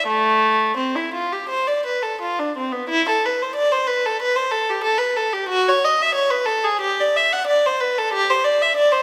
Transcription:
0.06 A3
0.77 C4
0.96 E4
1.14 F4
1.32 G4
1.49 C5
1.67 D5
1.86 B4
2.03 A4
2.21 F4
2.39 D4
2.57 C4
2.72 B3
2.89 E4
3.09 A4
3.26 B4
3.42 C5
3.55 D5
3.72 C5
3.87 B4
4.06 A4
4.22 B4
4.36 C5
4.51 A4
4.70 G4
4.84 A4
4.98 B4
5.16 A4
5.33 G4
5.49 F#4
5.69 C#5
5.84 D#5
6.02 E5
6.15 C#5
6.30 B4
6.46 A4
6.64 G#4
6.81 G4
7.00 D5
7.16 E5
7.33 F#5
7.47 D5
7.66 C5
7.80 B4
7.98 A4
8.13 G4
8.30 C5
8.44 D5
8.62 E5
8.77 D5
8.92 C5

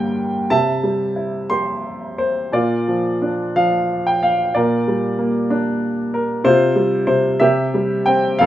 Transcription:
Already playing: G2 D3 G3 A#3 A#4 G5
0.50 C3 E5 A5
0.83 G3
1.16 E4
1.50 G4 C6
2.18 C5
2.52 A#2 F4 D5
2.88 F3
3.22 D4
3.56 F3 F5
4.07 G5
4.23 F5
4.54 A#2 A#4 D5
4.88 G3
5.19 A#3
5.50 D4
6.14 A#4
6.44 C3 F4 C5
6.76 G3
7.07 C3 C5
7.40 C3 G4 E5
7.74 G3
8.06 C4 G5
8.39 F2 A4 F5

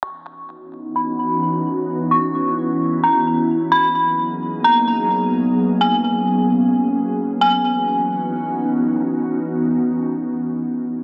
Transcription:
0.03 E3 B3 C#4 D#4 F#4 C#6
0.96 B5
1.88 E4
2.11 C#6
3.04 A#5
3.72 F#3 A#3 B3 D#4 G#4 B5
4.64 A#5
5.57 C#4
5.81 G#5
7.41 E3 B3 C#4 D#4 F#4 G#5

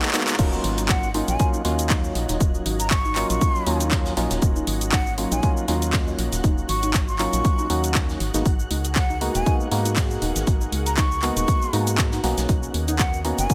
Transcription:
Already playing: G#3 A#3 B3 D#4 F#4 A#4 C#5 D#5 F#6, riser
0.02 clap
0.08 clap
0.14 G#3 A#3 B3 D#4 F#4, clap, open hi-hat, shaker
0.20 clap
0.28 clap, closed hi-hat, shaker
0.33 clap
0.39 D#1 F#3 A#3 C#4 D#4 F4 F#4 C#5 D#5 F#6, kick, closed hi-hat, crash, shaker
0.53 shaker
0.64 G#1, closed hi-hat, open hi-hat
0.78 D#4, closed hi-hat, shaker
0.89 F#5, kick, snare, clap, closed hi-hat, shaker
1.03 shaker
1.14 F#3 A#3 C#4 D#4 F4, closed hi-hat, open hi-hat
1.28 A#1 G#5, closed hi-hat, shaker
1.39 F#3 A#3 C#4 D#4 F4, kick, closed hi-hat, shaker
1.54 D#4, shaker
1.64 D#2 F#3 A#3 C#4 D#4 F4, snare, closed hi-hat, open hi-hat
1.79 closed hi-hat, shaker
1.90 D#4, kick, snare, clap, closed hi-hat, open hi-hat, shaker
2.04 shaker
2.15 A#1, snare, closed hi-hat, open hi-hat
2.29 D#1 D#4, snare, closed hi-hat, shaker
2.40 D#1, kick, closed hi-hat, shaker
2.54 closed hi-hat, shaker
2.66 G#1 D#4, closed hi-hat, open hi-hat
2.80 A#5, closed hi-hat, shaker
2.90 C#6, kick, snare, clap, closed hi-hat, shaker
3.05 D#4, shaker
3.16 F#3 A#3 C#4 D#4 F4, clap, closed hi-hat, open hi-hat
3.30 A#1 C#6, closed hi-hat, shaker
3.41 D#4, kick, closed hi-hat, shaker
3.55 shaker
3.66 D#2 F#3 A#3 C#4 D#4 F4, closed hi-hat, open hi-hat
3.80 D#4, closed hi-hat, shaker
3.91 kick, snare, clap, closed hi-hat, shaker
4.06 snare, closed hi-hat, shaker
4.17 A#1 F#3 A#3 C#4 D#4 F4, snare, closed hi-hat, open hi-hat
4.30 D#1, snare, closed hi-hat, shaker
4.41 D#1, kick, closed hi-hat, shaker
4.56 D#4, shaker
4.67 G#1, closed hi-hat, open hi-hat
4.81 closed hi-hat, shaker
4.92 D#4 F#5, kick, snare, clap, closed hi-hat, shaker
5.07 shaker
5.18 F#3 A#3 C#4 D#4 F4, closed hi-hat, open hi-hat
5.32 A#1 D#4 G#5, closed hi-hat, shaker
5.43 F#3 A#3 C#4 D#4 F4, kick, closed hi-hat, shaker
5.57 shaker
5.67 D#2 F#3 A#3 C#4 D#4 F4, snare, closed hi-hat, open hi-hat
5.82 closed hi-hat, shaker
5.93 kick, snare, clap, closed hi-hat, open hi-hat, shaker
6.07 D#4, shaker
6.18 A#1, snare, closed hi-hat, open hi-hat
6.32 D#1, snare, closed hi-hat, shaker
6.44 D#1 D#4, kick, closed hi-hat, shaker
6.58 closed hi-hat, shaker
6.69 G#1 C#6, closed hi-hat, open hi-hat
6.83 D#4, closed hi-hat, shaker
6.93 kick, snare, clap, closed hi-hat, shaker
7.08 C#6, shaker
7.19 F#3 A#3 C#4 D#4 F4, clap, closed hi-hat, open hi-hat
7.33 A#1, closed hi-hat, shaker
7.45 kick, closed hi-hat, shaker
7.59 D#4, shaker
7.70 D#2 F#3 A#3 C#4 D#4 F#4, closed hi-hat, open hi-hat
7.84 closed hi-hat, shaker
7.94 D#4, kick, snare, clap, closed hi-hat, shaker
8.09 snare, shaker
8.20 G#1 G#4 A#4 F#5, snare, closed hi-hat, open hi-hat
8.34 G#1 G#3 A#3 B3 D#4 F#4, snare, closed hi-hat, shaker
8.45 G#1, kick, closed hi-hat, shaker
8.59 shaker
8.71 C#2 D#4, closed hi-hat, open hi-hat
8.85 closed hi-hat, shaker
8.95 F#5, kick, snare, clap, closed hi-hat, shaker
9.10 D#4, shaker
9.21 G#3 A#3 B3 D#4 F#4, closed hi-hat, open hi-hat
9.35 D#1 G#5, closed hi-hat, shaker
9.46 G#3 A#3 B3 D#4 F#4, kick, closed hi-hat, shaker
9.60 shaker
9.71 G#2 G#3 A#3 B3 D#4 F#4, snare, closed hi-hat, open hi-hat
9.85 D#4, closed hi-hat, shaker
9.96 kick, snare, clap, closed hi-hat, open hi-hat, shaker
10.11 shaker
10.22 D#1 D#4, snare, closed hi-hat, open hi-hat
10.35 G#1, snare, closed hi-hat, shaker
10.47 G#1, kick, closed hi-hat, shaker
10.61 D#4, closed hi-hat, shaker
10.72 C#2, closed hi-hat, open hi-hat
10.86 A#5, closed hi-hat, shaker
10.97 D#4 C#6, kick, snare, clap, closed hi-hat, shaker
11.12 shaker
11.22 G#3 A#3 B3 D#4 F#4, clap, closed hi-hat, open hi-hat
11.37 D#1 D#4 C#6, closed hi-hat, shaker
11.48 kick, closed hi-hat, shaker
11.62 shaker
11.73 G#2 G#3 A#3 B3 D#4 F#4, closed hi-hat, open hi-hat
11.87 closed hi-hat, shaker
11.98 kick, snare, clap, closed hi-hat, shaker
12.12 D#4, snare, closed hi-hat, shaker
12.24 B1 A#3 B3 C#4 D#4 F#4 A#4 C#5 D#5, snare, closed hi-hat, open hi-hat
12.37 B1, snare, closed hi-hat, shaker
12.49 B1 D#4, kick, closed hi-hat, shaker
12.63 shaker
12.74 D#2, closed hi-hat, open hi-hat
12.88 D#4, closed hi-hat, shaker
12.99 F#5, kick, snare, clap, closed hi-hat, shaker
13.13 shaker
13.24 A#3 B3 C#4 D#4 F#4, closed hi-hat, open hi-hat
13.38 F#1 G#5, closed hi-hat, shaker
13.50 A#3 B3 C#4 D#4 F#4, kick, closed hi-hat, shaker

